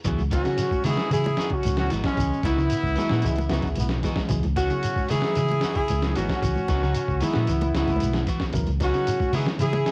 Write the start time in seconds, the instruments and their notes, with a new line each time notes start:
0.04 fingered electric bass C#2, clean electric guitar E3 B3 F#4, reed electric piano F#3 B3 E4 G#4, muted clean electric guitar stroke, kick, closed hi-hat, shekere
0.18 fingered electric bass C#2, closed hi-hat, high conga, shekere
0.31 clean electric guitar E3 B3 D#4, trumpet C#4, horn section F#4, kick, closed hi-hat, high conga, shekere
0.44 clean electric guitar C#3, reed electric piano F#3 B3 E4 G#4, snare, closed hi-hat, shekere
0.58 snare, closed hi-hat, shekere
0.71 kick, high conga, shekere
0.84 fingered electric bass C#3, clean electric guitar D#3 B3 D#4 F#4, trumpet E4, horn section G#4, muted clean electric guitar stroke, open hi-hat, high conga, low conga, shekere
0.97 reed electric piano F#3 B3 E4 G#4, clean electric guitar B3 D#4 F#4, snare, shekere
1.11 fingered electric bass C#3, clean electric guitar E3, trumpet E4, horn section G#4, closed hi-hat, shekere
1.24 closed hi-hat, high conga, shekere
1.37 clean electric guitar E3 B3 D#4 F#4, snare, closed hi-hat, low conga, shekere
1.50 clean electric guitar C#3, trumpet C#4, horn section F#4, muted fingered electric bass stroke, kick, closed hi-hat
1.55 shekere
1.63 fingered electric bass C#2, closed hi-hat, high conga, low conga, shekere
1.76 reed electric piano F#3 B3 E4 G#4, trumpet C#4, horn section F#4, snare, closed hi-hat, shekere
1.90 fingered electric bass G#1, clean electric guitar E3 B3 D#4 F#4, closed hi-hat, high conga, low conga, shekere
2.04 trumpet G#3, horn section C#4, kick, snare, closed hi-hat, shekere
2.17 fingered electric bass C#2, clean electric guitar E3, kick, closed hi-hat, shekere
2.34 shekere
2.43 fingered electric bass C#2, clean electric guitar E3 B3 D#4 F#4, trumpet B3, horn section E4, kick, closed hi-hat, high conga, shekere
2.56 clean electric guitar C#3, snare, shekere
2.70 closed hi-hat, shekere
2.83 fingered electric bass C#2, kick, high conga, shekere
2.96 clean electric guitar D#3 E3 B3 D#4 F#4, reed electric piano F#3 B3 E4 G#4, trombone section B3, open hi-hat, high conga, low conga, shekere
3.10 fingered electric bass A#2, clean electric guitar B3 D#4 F#4, snare, shekere
3.22 fingered electric bass C#2, clean electric guitar E3, trombone section G#3, closed hi-hat, shekere
3.36 closed hi-hat, high conga
3.41 shekere
3.49 fingered electric bass C#2, reed electric piano F#3 B3 E4 G#4, trombone section B3, clean electric guitar B3 D#4 F#4, muted clean electric guitar stroke, snare, closed hi-hat, low conga, shekere
3.62 fingered electric bass C#2, clean electric guitar C#3, kick, snare, closed hi-hat
3.66 shekere
3.75 fingered electric bass B1, trombone section B3, closed hi-hat, high conga, shekere
3.89 snare, closed hi-hat, shekere
4.03 clean electric guitar E3 B3 D#4 F#4, trombone section G#3, kick, closed hi-hat, high conga, low conga, shekere
4.16 kick, snare, shekere
4.28 fingered electric bass C#2, clean electric guitar E3, reed electric piano F#3 B3 E4 G#4, kick, closed hi-hat, shekere
4.43 fingered electric bass C#2, closed hi-hat, high conga, shekere
4.56 clean electric guitar E3 B3 F#4, trumpet C#4, horn section F#4, kick, closed hi-hat, high conga, shekere
4.70 clean electric guitar C#3, reed electric piano F#3 B3 E4 G#4, closed hi-hat, shekere
4.83 closed hi-hat, shekere
4.96 kick, high conga, shekere
5.08 fingered electric bass C#3, clean electric guitar D#3 E3 B3 D#4 F#4, trumpet E4, horn section G#4, open hi-hat, high conga, low conga, shekere
5.22 reed electric piano F#3 B3 E4 G#4, clean electric guitar B3 D#4, snare, shekere
5.35 fingered electric bass C#3, clean electric guitar E3, closed hi-hat, shekere
5.48 closed hi-hat, high conga, shekere
5.61 clean electric guitar E3 B3 D#4 F#4, snare, closed hi-hat, low conga, shekere
5.75 clean electric guitar C#3, trumpet E4, horn section G#4, muted fingered electric bass stroke, kick, closed hi-hat, shekere
5.88 fingered electric bass C#2, closed hi-hat, high conga, shekere
6.02 reed electric piano F#3 B3 E4 G#4, snare, closed hi-hat, shekere
6.15 fingered electric bass G#1, clean electric guitar E3 B3 D#4, trumpet C#4, horn section F#4, closed hi-hat, high conga, low conga, shekere
6.29 kick, snare, closed hi-hat, shekere
6.42 fingered electric bass C#2, clean electric guitar E3, kick, closed hi-hat, shekere
6.56 high conga, shekere
6.68 fingered electric bass C#2, clean electric guitar E3 B3 D#4 F#4, kick, snare, closed hi-hat, high conga, shekere
6.82 clean electric guitar C#3 D#4 F#4, snare, shekere
6.94 closed hi-hat, shekere
7.08 fingered electric bass C#2, kick, high conga, shekere
7.20 clean electric guitar D#3 E3 B3 D#4 F#4, reed electric piano F#3 B3 E4 G#4, trumpet B3, horn section E4, open hi-hat, high conga, low conga, shekere
7.33 fingered electric bass A#2, clean electric guitar B3 D#4 F#4, snare, shekere
7.47 fingered electric bass C#2, clean electric guitar E3, closed hi-hat, shekere
7.61 closed hi-hat, high conga, shekere
7.74 fingered electric bass C#2, clean electric guitar E3 D#4 F#4, reed electric piano F#3 B3 E4 G#4, trumpet B3, horn section E4, snare, closed hi-hat, low conga, shekere
7.87 fingered electric bass C#2, clean electric guitar C#3, kick, snare, closed hi-hat, high conga, shekere
7.96 closed hi-hat, high conga
8.01 fingered electric bass B1, shekere
8.06 high conga
8.13 snare, closed hi-hat, low conga, shekere
8.27 clean electric guitar E3 B3 F#4, muted clean electric guitar stroke, kick, closed hi-hat, shekere
8.40 kick, snare, low conga, shekere
8.50 fingered electric bass C#2, reed electric piano B3 E4, kick, closed hi-hat, low conga
8.54 clean electric guitar E3, reed electric piano F#3 A#4, shekere
8.67 fingered electric bass C#2, closed hi-hat, high conga, shekere
8.80 clean electric guitar E3 B3 D#4 F#4, trumpet C#4, horn section F#4, kick, snare, closed hi-hat, high conga, shekere
8.94 clean electric guitar C#3 B3 D#4 F#4, reed electric piano F#3 B3 E4 G#4, closed hi-hat, shekere
9.07 closed hi-hat, shekere
9.20 kick, high conga, shekere
9.33 fingered electric bass C#3, clean electric guitar D#3 E3 B3 D#4 F#4, trumpet E4, horn section G#4, open hi-hat, high conga, low conga, shekere
9.47 reed electric piano F#3 B3 E4 G#4, snare, shekere
9.59 fingered electric bass C#3, clean electric guitar E3, trumpet E4, horn section G#4, closed hi-hat, shekere
9.73 closed hi-hat, high conga, shekere
9.86 clean electric guitar E3 B3 D#4, snare, closed hi-hat, shekere